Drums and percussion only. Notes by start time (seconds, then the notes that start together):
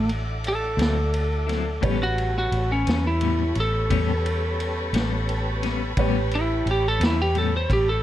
0.09 ride
0.44 ride
0.79 snare, ride
1.14 ride
1.49 snare, ride
1.83 kick, ride
2.18 ride
2.52 ride
2.87 snare, ride
3.21 ride
3.55 ride
3.90 kick, ride
4.26 ride
4.60 ride
4.94 snare, ride
5.29 ride
5.63 snare, ride
5.97 kick, ride
6.31 ride
6.67 ride
7.01 snare, ride
7.35 ride
7.70 kick, ride